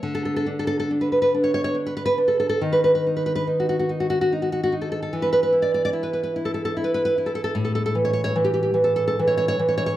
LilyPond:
\new Staff \with { instrumentName = "Nylon-string guitar" } { \time 3/4 \key a \mixolydian \tempo 4 = 72 << { r32 a'32 a'32 a'32 r32 a'32 a'32 a'32 r32 b'32 b'32 b'32 r32 cis''32 cis''32 cis''32 r32 b'32 b'32 b'32 r32 a'32 a'32 a'32 | r32 b'32 b'32 b'32 r32 b'32 b'32 b'32 r32 fis'32 fis'32 fis'32 r32 fis'32 fis'32 fis'32 r32 fis'32 fis'32 fis'32 r32 a'32 a'32 a'32 | r32 b'32 b'32 b'32 r32 d''32 d''32 d''32 r32 b'32 b'32 b'32 r32 a'32 a'32 a'32 r32 b'32 b'32 b'32 r32 a'32 a'32 a'32 | r32 a'32 a'32 a'32 r32 cis''32 cis''32 cis''32 r32 g'32 g'32 g'32 r32 a'32 a'32 a'32 r32 cis''32 cis''32 cis''32 r32 cis''32 cis''32 cis''32 | } \\ { d8 d'8 d'8 d'8 d'8 d'8 | ees8 ees'8 ees'8 ees'8 ees'8 ees'8 | e8 e'8 e'8 e'8 e'8 e'8 | a,8 e8 e8 e8 e8 e8 | } >> }